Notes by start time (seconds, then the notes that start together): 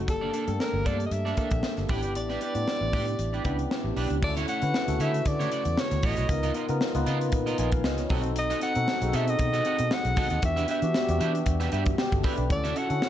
Already playing: C4
0.07 G1 A#3 D4 G4 A4, muted clean electric guitar stroke, kick, closed hi-hat
0.21 A#3 D4 A4 D5
0.33 A#3 D4 A4 D5, closed hi-hat
0.47 G2 A3 D4 G4 A4, muted clean electric guitar stroke, closed hi-hat
0.53 A#3
0.60 A#4, snare
0.73 G1, muted clean electric guitar stroke
0.85 G2 A#3 D4 A4 D5, kick, closed hi-hat
1.00 muted clean electric guitar stroke, closed hi-hat
1.06 D#5
1.11 G2 E5, muted clean electric guitar stroke, closed hi-hat
1.25 A#3 D4 A4 D5, snare
1.37 A#3 D4 G4 A4 E5, kick, closed hi-hat
1.51 A#1, muted clean electric guitar stroke, kick, closed hi-hat
1.63 muted clean electric guitar stroke, snare
1.77 G1, muted clean electric guitar stroke, snare, closed hi-hat
1.88 A1 B3 C#4 D4 E4 G4 B4 D5, kick, open hi-hat
1.96 D4
2.02 G1 D4 G4 B4 D5, closed hi-hat
2.15 A1 D5, muted clean electric guitar stroke, closed hi-hat
2.29 D4 G4 B4 D5, snare, closed hi-hat
2.41 D4 G4 B4 D5, closed hi-hat
2.55 A2 B3 D4 E4 G4, muted clean electric guitar stroke, closed hi-hat
2.68 snare
2.81 A1, muted clean electric guitar stroke
2.93 A2 D4 G4 B4 D5, kick, open hi-hat
3.07 muted clean electric guitar stroke, closed hi-hat
3.19 A1, muted clean electric guitar stroke, closed hi-hat
3.33 D4 G4 B4 D5, closed hi-hat
3.44 C#2 B3 C#4 D4 E4 G4 B4 D5, kick, closed hi-hat
3.51 D4
3.59 muted clean electric guitar stroke, closed hi-hat
3.71 muted clean electric guitar stroke, snare
3.84 A1, muted clean electric guitar stroke
3.97 B1 D4 G4 B4 D5, open hi-hat
4.10 C#2, muted clean electric guitar stroke, closed hi-hat
4.22 D2 C#4 E4 F#4 A4 D5, muted clean electric guitar stroke, kick, crash
4.37 A3 E4 F#4 C#5, snare, closed hi-hat
4.48 A3 E4 F#4 C#5 F#5, closed hi-hat
4.62 D3 C#4 E4 F#4 B4, muted clean electric guitar stroke, closed hi-hat
4.74 snare
4.87 D2 C#3 E4 F#4 A4, muted clean electric guitar stroke, closed hi-hat
5.00 D3 A3 E4 F#4 C#5 E5, closed hi-hat
5.14 muted clean electric guitar stroke, closed hi-hat
5.25 D3 D5, muted clean electric guitar stroke, kick, closed hi-hat
5.40 A3 E4 F#4 C#5, snare, closed hi-hat
5.51 A3 E4 F#4 D5, closed hi-hat
5.65 E2, muted clean electric guitar stroke, closed hi-hat
5.77 C#5, muted clean electric guitar stroke, snare
5.91 D2, muted clean electric guitar stroke, snare, closed hi-hat
6.03 A1 A3 E4 F#4 C#5 D#5, kick, open hi-hat
6.17 B1 A3 E4 F#4 C#5, closed hi-hat
6.29 C#2 B3 D#4 F4 A#4, muted clean electric guitar stroke, kick, closed hi-hat
6.43 B3 F4 A#4 D#5, closed hi-hat
6.54 B3 F4 A#4 D#5, closed hi-hat
6.69 C#3 B3 D#4 F4 A#4, muted clean electric guitar stroke, closed hi-hat
6.81 snare
6.94 C#2 B3 D#4 F4 B4, muted clean electric guitar stroke, closed hi-hat
7.06 C#3 B3 F4 A#4 D#5, closed hi-hat
7.21 muted clean electric guitar stroke, closed hi-hat
7.32 A#2, muted clean electric guitar stroke, kick, closed hi-hat
7.46 B3 F4 A#4 D#5, snare, closed hi-hat
7.58 A#1 B3 F4 A#4 D#5 G#5, closed hi-hat
7.72 F5, muted clean electric guitar stroke, kick, closed hi-hat
7.84 C#2 D#5, muted clean electric guitar stroke, snare
7.98 C#5, muted clean electric guitar stroke, snare, closed hi-hat
8.09 B1 C4 D#4 F#4 A4 D#5, kick, open hi-hat
8.24 muted clean electric guitar stroke, closed hi-hat
8.36 D#5, muted clean electric guitar stroke, closed hi-hat
8.50 C4 F#4 A4 D#5, snare, closed hi-hat
8.61 C4 F#4 A4 D#5 F#5, closed hi-hat
8.75 B2 C4 D#4 F#4 A4, muted clean electric guitar stroke, closed hi-hat
8.88 snare
9.02 B1 C4 D#4 F#4 G#4, muted clean electric guitar stroke, closed hi-hat
9.09 A4
9.13 B2 C4 F#4 A4 D#5 E5, closed hi-hat
9.27 D#5, muted clean electric guitar stroke, closed hi-hat
9.39 B2, muted clean electric guitar stroke, kick, closed hi-hat
9.53 C4 F#4 A4 D#5, snare, closed hi-hat
9.65 C4 F#4 A4 F#5, closed hi-hat
9.79 B2, muted clean electric guitar stroke, closed hi-hat
9.91 F#5, muted clean electric guitar stroke, snare
10.05 B1, muted clean electric guitar stroke, closed hi-hat
10.16 C2 C4 F#4 A4 D#5, kick, open hi-hat
10.30 D#2 C4 F#4 A4 D#5, closed hi-hat
10.42 E2 B3 D4 F#4 G4 E5, muted clean electric guitar stroke, kick, closed hi-hat
10.56 D4 G4 B4 E5, snare, closed hi-hat
10.68 D4 G4 B4 E5, closed hi-hat
10.82 E3 B3 D4 F#4 G4, muted clean electric guitar stroke, closed hi-hat
10.94 snare
11.08 E2 B3 D4 F#4 G4, muted clean electric guitar stroke, closed hi-hat
11.20 E3 D4 G4 B4 E5, closed hi-hat
11.34 muted clean electric guitar stroke, closed hi-hat
11.46 E2, muted clean electric guitar stroke, kick, closed hi-hat
11.60 D4 G4 B4 E5, snare, closed hi-hat
11.72 G2 D4 G4 B4 E5, closed hi-hat
11.86 muted clean electric guitar stroke, kick, closed hi-hat
11.98 G4 G5, muted clean electric guitar stroke, snare
12.12 G1, muted clean electric guitar stroke, kick, closed hi-hat
12.23 D4 G4 B4 E5 B5, kick, open hi-hat
12.37 B1 D5, muted clean electric guitar stroke, closed hi-hat
12.49 D2 C#4 E4 F#4 A4 D5, muted clean electric guitar stroke, kick, closed hi-hat
12.64 C#4 F#4 A4 E5, snare, closed hi-hat
12.76 C#4 F#4 A4 E5 F#5, closed hi-hat
12.89 D3 C#4 E4 F#4 A4, muted clean electric guitar stroke, closed hi-hat
13.02 snare